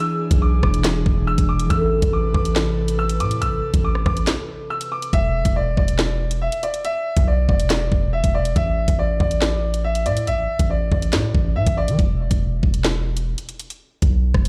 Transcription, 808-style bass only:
0, 0, Header, 1, 2, 480
1, 0, Start_track
1, 0, Key_signature, 0, "minor"
1, 0, Tempo, 428571
1, 1906, Time_signature, 4, 2, 24, 8
1, 16227, End_track
2, 0, Start_track
2, 0, Title_t, "808-style bass"
2, 0, Program_c, 0, 38
2, 346, Note_on_c, 0, 35, 108
2, 692, Note_off_c, 0, 35, 0
2, 706, Note_on_c, 0, 28, 111
2, 1167, Note_off_c, 0, 28, 0
2, 1187, Note_on_c, 0, 28, 99
2, 1532, Note_off_c, 0, 28, 0
2, 1547, Note_on_c, 0, 28, 102
2, 1892, Note_off_c, 0, 28, 0
2, 1907, Note_on_c, 0, 33, 111
2, 2252, Note_off_c, 0, 33, 0
2, 2266, Note_on_c, 0, 33, 108
2, 2612, Note_off_c, 0, 33, 0
2, 2626, Note_on_c, 0, 33, 108
2, 3586, Note_on_c, 0, 45, 99
2, 3603, Note_off_c, 0, 33, 0
2, 3826, Note_on_c, 0, 33, 101
2, 3843, Note_off_c, 0, 45, 0
2, 4055, Note_off_c, 0, 33, 0
2, 4186, Note_on_c, 0, 33, 109
2, 4532, Note_off_c, 0, 33, 0
2, 4546, Note_on_c, 0, 33, 109
2, 4786, Note_off_c, 0, 33, 0
2, 5746, Note_on_c, 0, 28, 115
2, 6092, Note_off_c, 0, 28, 0
2, 6106, Note_on_c, 0, 28, 105
2, 6452, Note_off_c, 0, 28, 0
2, 6466, Note_on_c, 0, 28, 108
2, 7273, Note_off_c, 0, 28, 0
2, 8026, Note_on_c, 0, 35, 102
2, 8372, Note_off_c, 0, 35, 0
2, 8386, Note_on_c, 0, 28, 110
2, 8847, Note_off_c, 0, 28, 0
2, 8867, Note_on_c, 0, 28, 104
2, 9213, Note_off_c, 0, 28, 0
2, 9227, Note_on_c, 0, 28, 102
2, 9572, Note_off_c, 0, 28, 0
2, 9586, Note_on_c, 0, 33, 117
2, 9932, Note_off_c, 0, 33, 0
2, 9946, Note_on_c, 0, 33, 107
2, 10292, Note_off_c, 0, 33, 0
2, 10306, Note_on_c, 0, 33, 111
2, 11267, Note_on_c, 0, 45, 100
2, 11283, Note_off_c, 0, 33, 0
2, 11507, Note_on_c, 0, 33, 100
2, 11524, Note_off_c, 0, 45, 0
2, 11735, Note_off_c, 0, 33, 0
2, 11866, Note_on_c, 0, 33, 101
2, 12212, Note_off_c, 0, 33, 0
2, 12226, Note_on_c, 0, 33, 111
2, 12467, Note_on_c, 0, 45, 98
2, 12484, Note_off_c, 0, 33, 0
2, 12695, Note_off_c, 0, 45, 0
2, 12707, Note_on_c, 0, 33, 105
2, 12946, Note_on_c, 0, 45, 103
2, 12963, Note_off_c, 0, 33, 0
2, 13060, Note_off_c, 0, 45, 0
2, 13066, Note_on_c, 0, 33, 110
2, 13307, Note_on_c, 0, 52, 98
2, 13324, Note_off_c, 0, 33, 0
2, 13421, Note_off_c, 0, 52, 0
2, 13427, Note_on_c, 0, 28, 108
2, 13772, Note_off_c, 0, 28, 0
2, 13786, Note_on_c, 0, 28, 107
2, 14132, Note_off_c, 0, 28, 0
2, 14146, Note_on_c, 0, 28, 105
2, 14953, Note_off_c, 0, 28, 0
2, 15706, Note_on_c, 0, 35, 101
2, 16052, Note_off_c, 0, 35, 0
2, 16066, Note_on_c, 0, 28, 104
2, 16227, Note_off_c, 0, 28, 0
2, 16227, End_track
0, 0, End_of_file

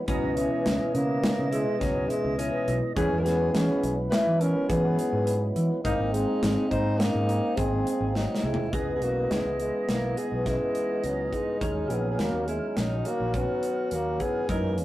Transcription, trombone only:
0, 0, Header, 1, 2, 480
1, 0, Start_track
1, 0, Tempo, 576369
1, 67, Time_signature, 5, 2, 24, 8
1, 12365, End_track
2, 0, Start_track
2, 0, Title_t, "Trombone"
2, 0, Program_c, 0, 57
2, 58, Note_on_c, 0, 54, 90
2, 296, Note_on_c, 0, 52, 78
2, 308, Note_off_c, 0, 54, 0
2, 780, Note_on_c, 0, 58, 87
2, 792, Note_off_c, 0, 52, 0
2, 1255, Note_off_c, 0, 58, 0
2, 1260, Note_on_c, 0, 56, 86
2, 1500, Note_on_c, 0, 54, 82
2, 1512, Note_off_c, 0, 56, 0
2, 1736, Note_on_c, 0, 56, 85
2, 1748, Note_off_c, 0, 54, 0
2, 1972, Note_off_c, 0, 56, 0
2, 1977, Note_on_c, 0, 52, 81
2, 2317, Note_off_c, 0, 52, 0
2, 2459, Note_on_c, 0, 61, 93
2, 2644, Note_off_c, 0, 61, 0
2, 2644, Note_on_c, 0, 61, 62
2, 2699, Note_on_c, 0, 59, 90
2, 2712, Note_off_c, 0, 61, 0
2, 2938, Note_on_c, 0, 61, 88
2, 2951, Note_off_c, 0, 59, 0
2, 3303, Note_off_c, 0, 61, 0
2, 3419, Note_on_c, 0, 64, 94
2, 3664, Note_on_c, 0, 61, 97
2, 3677, Note_off_c, 0, 64, 0
2, 3903, Note_off_c, 0, 61, 0
2, 3908, Note_on_c, 0, 59, 88
2, 4595, Note_off_c, 0, 59, 0
2, 4863, Note_on_c, 0, 58, 79
2, 5102, Note_on_c, 0, 56, 84
2, 5114, Note_off_c, 0, 58, 0
2, 5573, Note_off_c, 0, 56, 0
2, 5578, Note_on_c, 0, 63, 89
2, 5814, Note_on_c, 0, 58, 84
2, 5827, Note_off_c, 0, 63, 0
2, 6292, Note_on_c, 0, 60, 83
2, 6305, Note_off_c, 0, 58, 0
2, 6781, Note_off_c, 0, 60, 0
2, 6794, Note_on_c, 0, 54, 67
2, 7030, Note_on_c, 0, 56, 68
2, 7042, Note_off_c, 0, 54, 0
2, 7268, Note_on_c, 0, 59, 72
2, 7280, Note_off_c, 0, 56, 0
2, 7438, Note_off_c, 0, 59, 0
2, 7443, Note_on_c, 0, 59, 53
2, 7507, Note_on_c, 0, 58, 67
2, 7519, Note_off_c, 0, 59, 0
2, 7748, Note_on_c, 0, 56, 63
2, 7760, Note_off_c, 0, 58, 0
2, 7981, Note_off_c, 0, 56, 0
2, 7986, Note_on_c, 0, 56, 74
2, 8232, Note_on_c, 0, 58, 79
2, 8245, Note_off_c, 0, 56, 0
2, 8470, Note_on_c, 0, 59, 77
2, 8483, Note_off_c, 0, 58, 0
2, 8714, Note_on_c, 0, 56, 79
2, 8726, Note_off_c, 0, 59, 0
2, 9198, Note_on_c, 0, 54, 71
2, 9210, Note_off_c, 0, 56, 0
2, 9435, Note_on_c, 0, 56, 79
2, 9448, Note_off_c, 0, 54, 0
2, 9917, Note_on_c, 0, 59, 72
2, 9929, Note_off_c, 0, 56, 0
2, 10082, Note_off_c, 0, 59, 0
2, 10087, Note_on_c, 0, 59, 58
2, 10150, Note_on_c, 0, 58, 79
2, 10163, Note_off_c, 0, 59, 0
2, 10383, Note_off_c, 0, 58, 0
2, 10388, Note_on_c, 0, 56, 71
2, 10638, Note_on_c, 0, 54, 76
2, 10650, Note_off_c, 0, 56, 0
2, 10882, Note_on_c, 0, 58, 84
2, 10894, Note_off_c, 0, 54, 0
2, 11116, Note_off_c, 0, 58, 0
2, 11122, Note_on_c, 0, 59, 86
2, 11599, Note_on_c, 0, 58, 83
2, 11611, Note_off_c, 0, 59, 0
2, 11828, Note_on_c, 0, 59, 87
2, 11840, Note_off_c, 0, 58, 0
2, 12067, Note_off_c, 0, 59, 0
2, 12072, Note_on_c, 0, 63, 84
2, 12294, Note_off_c, 0, 63, 0
2, 12365, End_track
0, 0, End_of_file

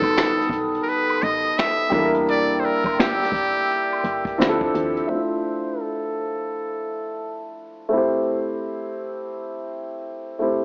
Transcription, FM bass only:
0, 0, Header, 1, 2, 480
1, 0, Start_track
1, 0, Key_signature, -1, "minor"
1, 0, Tempo, 705882
1, 1545, Time_signature, 4, 2, 24, 8
1, 7240, End_track
2, 0, Start_track
2, 0, Title_t, "FM bass"
2, 0, Program_c, 0, 39
2, 13, Note_on_c, 0, 33, 93
2, 294, Note_off_c, 0, 33, 0
2, 339, Note_on_c, 0, 35, 89
2, 545, Note_off_c, 0, 35, 0
2, 835, Note_on_c, 0, 33, 91
2, 1034, Note_off_c, 0, 33, 0
2, 1307, Note_on_c, 0, 40, 117
2, 1841, Note_off_c, 0, 40, 0
2, 1937, Note_on_c, 0, 31, 100
2, 2216, Note_off_c, 0, 31, 0
2, 2258, Note_on_c, 0, 29, 93
2, 2465, Note_off_c, 0, 29, 0
2, 2746, Note_on_c, 0, 31, 87
2, 2949, Note_off_c, 0, 31, 0
2, 2990, Note_on_c, 0, 38, 98
2, 3192, Note_off_c, 0, 38, 0
2, 3227, Note_on_c, 0, 39, 98
2, 3430, Note_off_c, 0, 39, 0
2, 7240, End_track
0, 0, End_of_file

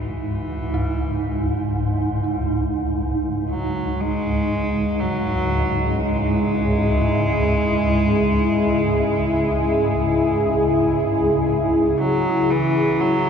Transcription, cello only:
0, 0, Header, 1, 2, 480
1, 0, Start_track
1, 0, Time_signature, 4, 2, 24, 8
1, 0, Key_signature, 4, "minor"
1, 0, Tempo, 1000000
1, 6382, End_track
2, 0, Start_track
2, 0, Title_t, "Cello"
2, 0, Program_c, 0, 42
2, 4, Note_on_c, 0, 52, 63
2, 942, Note_off_c, 0, 52, 0
2, 1678, Note_on_c, 0, 54, 80
2, 1921, Note_on_c, 0, 56, 92
2, 1928, Note_off_c, 0, 54, 0
2, 2398, Note_on_c, 0, 54, 84
2, 2405, Note_off_c, 0, 56, 0
2, 2882, Note_on_c, 0, 56, 86
2, 2889, Note_off_c, 0, 54, 0
2, 5280, Note_off_c, 0, 56, 0
2, 5754, Note_on_c, 0, 54, 86
2, 6003, Note_on_c, 0, 52, 86
2, 6011, Note_off_c, 0, 54, 0
2, 6242, Note_on_c, 0, 54, 80
2, 6249, Note_off_c, 0, 52, 0
2, 6382, Note_off_c, 0, 54, 0
2, 6382, End_track
0, 0, End_of_file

